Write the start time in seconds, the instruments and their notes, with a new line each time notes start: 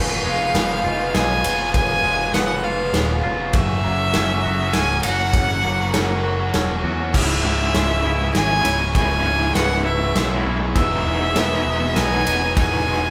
Already playing: picked electric bass F1, overdriven electric guitar C#2 G#2 C#3 G#3 B3 F4, analog synth pad F3 B4 C#5 G#5, clean electric guitar G#3, vibraphone F5, violin F5
0.24 picked electric bass F1, overdriven electric guitar C#3 G#3 B3 F4
0.54 picked electric bass F1, overdriven electric guitar C#2 G#2 C#3 G#3 B3 F4, snare, ride
0.69 overdriven electric guitar C#3 G#3 B3 F4
0.84 picked electric bass F1, clean electric guitar F4, vibraphone D#5, muted overdriven electric guitar stroke
0.99 overdriven electric guitar C#3 G#3 B3 F4
1.14 picked electric bass B1, clean electric guitar B3, violin G#5, snare, ride
1.29 overdriven electric guitar C#3 G#3 B3 F4
1.43 picked electric bass F1, overdriven electric guitar C#3 G#3 B3 F4, vibraphone C#5, ride
1.59 overdriven electric guitar C#3 G#3 B3 F4
1.73 picked electric bass F1, overdriven electric guitar C#2 G#2 C#3 G#3 B3 F4, violin G#5, kick, ride
2.03 picked electric bass F1, overdriven electric guitar C#3 G#3 B3 F4
2.32 picked electric bass F1, overdriven electric guitar C#2 G#2 C#3 G#3 B3 F4, vibraphone B4, violin F#5, snare, ride
2.48 overdriven electric guitar C#3 G#3 B3 F4
2.64 clean electric guitar F4, violin F5, muted overdriven electric guitar stroke
2.78 overdriven electric guitar C#3 G#3 B3 F4
2.93 picked electric bass D#1, clean electric guitar B3, vibraphone C#5, snare, ride
3.08 overdriven electric guitar C#3 G#3 B3 F4
3.23 picked electric bass F1, overdriven electric guitar C#3 G#3 B3 F4
3.38 overdriven electric guitar C#3 G#3 B3 F4
3.53 picked electric bass F#1, overdriven electric guitar F#2 C#3 F#3 A#3 C#4 F#4, vibraphone E5, violin E5, analog synth pad F#5 A#5, kick, ride
3.83 picked electric bass F#1, overdriven electric guitar F#3 A#3 C#4 F#4
4.13 picked electric bass F#1, overdriven electric guitar F#2 C#3 F#3 A#3 C#4 F#4, snare, ride
4.28 overdriven electric guitar F#3 A#3 C#4 F#4
4.43 picked electric bass F#1, clean electric guitar F#4, vibraphone D#6, muted overdriven electric guitar stroke
4.58 overdriven electric guitar F#3 A#3 C#4 F#4
4.73 picked electric bass C#1, clean electric guitar C#4, violin G#5, snare, ride
4.88 overdriven electric guitar F#3 A#3 C#4 F#4
5.03 picked electric bass F#1, overdriven electric guitar F#3 A#3 C#4 F#4, vibraphone C#5, violin F#5, ride
5.18 overdriven electric guitar F#3 A#3 C#4 F#4
5.33 picked electric bass F#1, overdriven electric guitar F#2 C#3 F#3 A#3 C#4 F#4, kick, ride
5.63 picked electric bass F#1, overdriven electric guitar F#3 A#3 C#4 F#4
5.93 picked electric bass F#1, overdriven electric guitar F#2 C#3 F#3 A#3 C#4 F#4, vibraphone A#4, snare, ride
6.08 overdriven electric guitar F#3 A#3 C#4 F#4
6.23 clean electric guitar F#4, muted overdriven electric guitar stroke
6.38 overdriven electric guitar F#3 A#3 C#4 F#4
6.53 picked electric bass E1, clean electric guitar C#4, vibraphone C#5, snare, ride
6.68 overdriven electric guitar F#3 A#3 C#4 F#4
6.83 picked electric bass E2, overdriven electric guitar F#3 A#3 C#4 F#4
6.98 overdriven electric guitar F#3 A#3 C#4 F#4
7.13 picked electric bass C#1, overdriven electric guitar C#2 G#2 C#3 G#3 E4, violin E5, vibraphone E5, analog synth pad G#5 C#6, kick, crash
7.43 picked electric bass C#1, overdriven electric guitar G#2 C#3 G#3 E4
7.58 overdriven electric guitar C#3 G#3 E4
7.73 picked electric bass C#1, overdriven electric guitar C#2 G#2 C#3 G#3 E4, snare, ride
7.88 overdriven electric guitar C#3 G#3 E4
8.03 picked electric bass C#1, overdriven electric guitar G#2 C#3 G#3 E4, clean electric guitar E4, vibraphone D#6, muted overdriven electric guitar stroke
8.18 overdriven electric guitar C#3 G#3 E4, muted overdriven electric guitar stroke
8.34 picked electric bass G#1, clean electric guitar G#3, violin G#5, snare, ride
8.48 overdriven electric guitar C#3 G#3 E4
8.64 picked electric bass C#1, overdriven electric guitar G#2 C#3 G#3 E4, vibraphone C#5, ride
8.79 overdriven electric guitar C#3 G#3 E4, muted overdriven electric guitar stroke
8.94 picked electric bass C#1, overdriven electric guitar C#2 G#2 C#3 G#3 E4, analog synth pad F#5, violin G#5, kick, ride
9.24 picked electric bass C#1, overdriven electric guitar G#2 C#3 G#3 E4
9.38 overdriven electric guitar C#3 G#3 E4
9.54 picked electric bass C#1, overdriven electric guitar C#2 G#2 C#3 G#3 E4, vibraphone B4, violin F#5, snare, ride
9.69 overdriven electric guitar C#3 G#3 E4
9.83 overdriven electric guitar G#2 C#3 G#3 E4, clean electric guitar E4, violin E5, muted overdriven electric guitar stroke
10.00 overdriven electric guitar C#3 G#3 E4, muted overdriven electric guitar stroke
10.15 picked electric bass B1, clean electric guitar G#3, vibraphone C#5, snare, ride
10.30 overdriven electric guitar C#3 G#3 E4
10.45 picked electric bass B1, overdriven electric guitar G#2 C#3 G#3 E4
10.60 overdriven electric guitar C#3 G#3 E4, muted overdriven electric guitar stroke
10.75 picked electric bass E1, overdriven electric guitar E2 B2 E3 G#3 B3 D#4, analog synth pad B4 G#5, violin E5, vibraphone E6, kick, ride
11.05 picked electric bass E1, overdriven electric guitar E3 G#3 B3 D#4
11.19 overdriven electric guitar E3 G#3 B3 D#4
11.35 picked electric bass E1, overdriven electric guitar E2 B2 E3 G#3 B3 D#4, snare, ride
11.50 overdriven electric guitar E3 G#3 B3 D#4
11.65 picked electric bass E1, overdriven electric guitar E3 G#3 B3 D#4, vibraphone D#6, muted overdriven electric guitar stroke
11.80 overdriven electric guitar E3 G#3 B3 D#4, muted overdriven electric guitar stroke
11.96 picked electric bass B1, clean electric guitar B3, violin G#5, snare, ride
12.11 overdriven electric guitar E3 G#3 B3 D#4
12.26 picked electric bass E1, overdriven electric guitar E3 G#3 B3 D#4, vibraphone C#5, ride
12.41 overdriven electric guitar E3 G#3 B3 D#4, muted overdriven electric guitar stroke
12.56 picked electric bass E1, overdriven electric guitar E2 B2 E3 G#3 B3 D#4, violin G#5, kick, ride
12.86 picked electric bass E1, overdriven electric guitar E3 G#3 B3 D#4
13.01 overdriven electric guitar E3 G#3 B3 D#4